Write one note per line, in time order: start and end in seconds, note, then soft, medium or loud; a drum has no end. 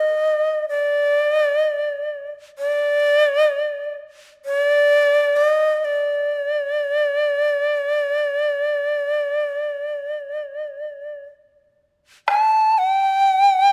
0.00 0.66 D#5 medium
0.69 1.28 D5 medium
1.28 1.40 D#5 medium
1.40 1.60 D5 medium
1.60 1.72 D#5 medium
1.72 2.29 D5 medium
2.59 3.95 D5 medium
4.45 5.38 D5 medium
5.36 5.86 D#5 medium
5.84 11.24 D5 medium
12.28 12.80 A5 medium
12.28 taiko rim soft
12.78 13.72 G5 medium